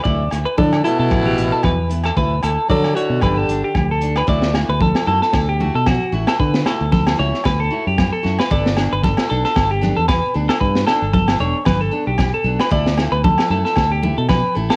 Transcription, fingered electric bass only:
X:1
M:4/4
L:1/16
Q:"Swing 16ths" 1/4=114
K:D
V:1 name="Fingered electric bass" clef=bass
D,,2 D,, z D,2 z B,, A,,,2 A,,, z E,,4 | D,,2 D,, z D,2 z B,, G,,,2 G,,, z D,,4 | D,,3 D,,2 z F,, z D,,3 B,,2 z A,,, z | D,2 z D,,3 C,, z D,,2 z F,,2 z F,, z |
G,,,3 G,,,2 z B,,, z G,,,3 E,,2 z D,, z | G,,2 z G,,,3 E,,, z G,,,2 z B,,,2 z B,,, z | D,,3 D,,2 z F,, z D,,3 B,,2 z A,,, z |]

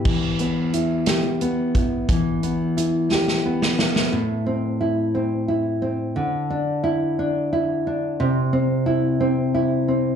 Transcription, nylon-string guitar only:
X:1
M:6/8
L:1/8
Q:3/8=59
K:Ephr
V:1 name="Nylon-string guitar"
E, B, E G B, E | E, B, E G B, E | A,, C E C E C | D, D E D E D |
C, C E C E C |]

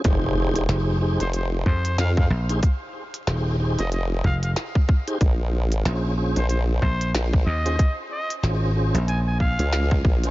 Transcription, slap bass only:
X:1
M:4/4
L:1/16
Q:"Swing 16ths" 1/4=93
K:Fm
V:1 name="Slap bass" clef=bass
z4 F,,,3 z3 F,,2 z2 B,,,2 | z4 E,,,3 z3 F,,,2 z4 | z4 B,,,3 z3 B,,,2 z2 E,,2 | z4 A,,,3 B,,,4 z4 z |]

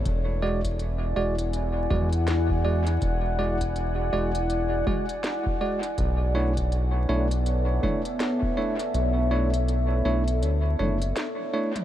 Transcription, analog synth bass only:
X:1
M:4/4
L:1/8
Q:"Swing 16ths" 1/4=81
K:Emix
V:1 name="Analog synth bass" clef=bass
E,,,3 E,,,2 E,,3 | E,,,3 E,,,2 z3 | B,,,3 B,,,2 z3 | B,,,3 B,,, D,, F,,, z2 |]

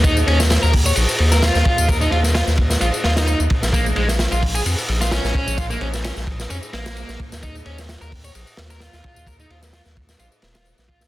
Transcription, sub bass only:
X:1
M:4/4
L:1/16
Q:"Swing 16ths" 1/4=130
K:Ebdor
V:1 name="Sub bass" clef=bass
E,,2 E,,3 E,,3 B,,, z E,,3 E,, z E,,- | E,,2 E,,3 E,,3 B,,, z E,,3 E,, z B,,,- | B,,,2 B,,,3 B,,,3 F,, z B,,,3 B,,, z B,,,- | B,,,2 B,,,3 B,,,3 F,, z B,,,3 B,,, z E,,- |
E,,2 E,,3 E,,3 B,,, z E,,3 E,, z E,,- | E,,2 E,,3 E,,3 B,,, z E,,,3 B,,,2 E,, |]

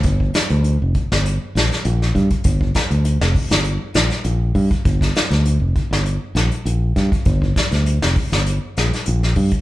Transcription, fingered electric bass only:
X:1
M:4/4
L:1/16
Q:1/4=100
K:Gm
V:1 name="Fingered electric bass" clef=bass
G,,,2 z D,,2 F,,, z G,,,2 z B,,, z B,,,2 G,, z | G,,,2 z D,,2 F,,, z G,,,2 z B,,, z B,,,2 G,, z | G,,,2 z D,,2 F,,, z G,,,2 z B,,, z B,,,2 G,, z | G,,,2 z D,,2 F,,, z G,,,2 z B,,, z B,,,2 G,, z |]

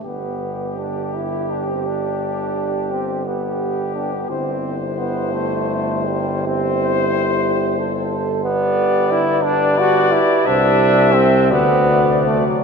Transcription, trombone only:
X:1
M:12/8
L:1/16
Q:3/8=58
K:G
V:1 name="Trombone"
B,4 D2 E2 D C D6 C2 B,4 D B, | C4 B,2 A,4 G,2 C4 z8 | B,4 E2 D2 F2 E2 D4 C2 B,4 A, F, |]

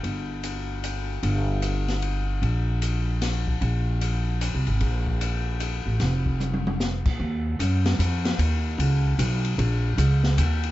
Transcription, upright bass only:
X:1
M:3/4
L:1/8
Q:"Swing" 1/4=151
K:Bb
V:1 name="Upright bass" clef=bass
G,,,6 | G,,,6 | B,,,6 | B,,,4- (3B,,, C,, _A,,, |
B,,,4- B,,, A,,, | F,,,4- F,,, B,, | [K:Ebm] E,,2 G,,2 F,,2 | E,,2 D,,2 C,,2 |
B,,,2 D,,2 E,,2 |]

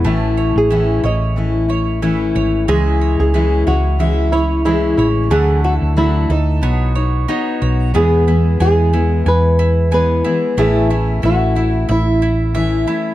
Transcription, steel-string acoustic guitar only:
X:1
M:4/4
L:1/8
Q:"Swing 16ths" 1/4=91
K:E
V:1 name="Steel-string acoustic guitar"
[A,,E,A,CE]2 [A,,E,A,CE] [A,CE] [E,A,CE] [A,CE] [E,A,CE]2 | [C,E,G,CE]2 [C,E,G,CE] [G,CE] [E,G,CE] [G,CE] [C,E,G,CE]2 | [=D,F,A,=DE]2 [D,F,A,DE] A, [B,^DFc] [DFc] [B,DFc]2 | [E,,B,,E,G,B,G] [E,G,B,G] [E,G,B,G] [E,G,B,G]3 [E,G,B,G] [E,G,B,G] |
[A,,E,A,CE] [A,CE] [E,A,CE] [A,CE]3 [E,A,CE] [A,CE] |]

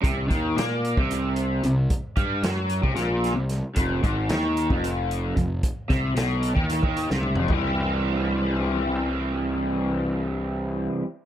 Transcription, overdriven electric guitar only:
X:1
M:7/8
L:1/16
Q:1/4=112
K:Cmix
V:1 name="Overdriven electric guitar" clef=bass
C,2 _E,2 B,3 C,4- C, C,2 | z2 G,2 ^F,3 C, B,,3 C,2 z | F,,2 _A,,2 _E,3 F,,4- F,, F,,2 | z2 C,2 =B,,3 _E,2 E,2 C,2 F,, |
[C,E,G,CE]12- [C,E,G,CE]2- | [C,E,G,CE]12- [C,E,G,CE]2 |]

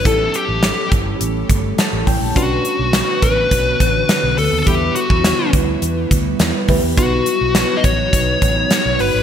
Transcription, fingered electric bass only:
X:1
M:4/4
L:1/16
Q:1/4=104
K:Bm
V:1 name="Fingered electric bass" clef=bass
A,,,2 z A,,,2 z G,,,2 A,,,2 G,,,2 z A,,, A,,, ^A,,, | B,,,2 z B,,,2 z A,,,2 B,,,2 A,,,2 z B,,, D,, ^D,, | E,,2 z E,,2 z D,,2 E,,2 D,,2 E,, z D,, E,, | B,,,2 z B,,,2 z A,,,2 B,,,2 A,,,2 z B,,, G,,, ^G,,, |]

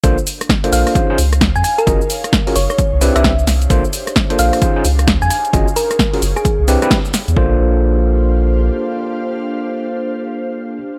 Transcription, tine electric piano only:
X:1
M:4/4
L:1/16
Q:"Swing 16ths" 1/4=131
K:Bb
V:1 name="Tine electric piano"
[B,DFAc] z4 [B,DFAc]3 [_DEF_Ac] [DEFAc] z6 | [_DF_G_Ae] z4 [DFGAB] z4 [C=D=E=G=B] [CDEGB] z4 | [B,DFAc] z4 [B,DFAc]3 [_DEF_Ac] [DEFAc] z6 | [_DF_G_Ae] z4 [DFGAB] z4 [C=D=E=G=B] [CDEGB] z4 |
[B,DFAc]16- | [B,DFAc]16 |]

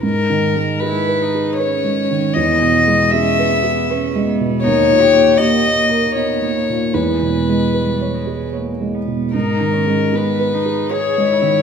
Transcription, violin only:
X:1
M:3/4
L:1/8
Q:1/4=78
K:G#m
V:1 name="Violin"
A2 B2 c2 | d2 e3 z | c2 d2 c2 | B4 z2 |
A2 B2 c2 |]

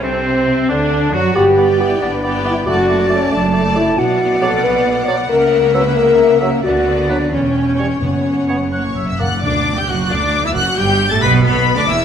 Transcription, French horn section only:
X:1
M:6/8
L:1/16
Q:3/8=90
K:D
V:1 name="French horn section"
=C6 D4 F2 | G4 E2 D4 E2 | F4 C2 D2 z2 E2 | [K:Edor] F4 A2 B4 d2 |
^A4 B2 A4 ^A,2 | F4 D2 C6 | C8- C2 z2 | D,3 G, F,2 D,3 E, F,2 |
G,3 A, B,2 B,,3 D, E,2 |]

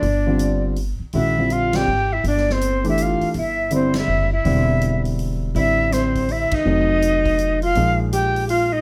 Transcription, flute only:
X:1
M:3/4
L:1/16
Q:"Swing" 1/4=163
K:Aphr
V:1 name="Flute"
d6 z6 | e4 f2 g4 e2 | d2 c4 e2 f3 z | e4 c2 e4 e2- |
e6 z6 | e4 c4 e2 _e2- | _e8- e2 f2- | [K:Cphr] f2 z2 g4 f2 e2 |]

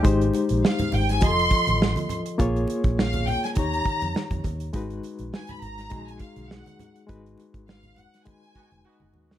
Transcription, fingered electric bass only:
X:1
M:4/4
L:1/16
Q:"Swing 16ths" 1/4=102
K:G#dor
V:1 name="Fingered electric bass" clef=bass
G,,,2 z A,,, z2 G,,,2 =F,,,2 z =A,,,2 z3 | A,,,2 z A,,,4 z D,,2 z E,, z E,, D,,2 | G,,,2 z A,,, z2 G,,,2 A,,,2 z B,,,2 z3 | G,,,2 z G,,,4 z4 E,,, z F,,, D,,2 |]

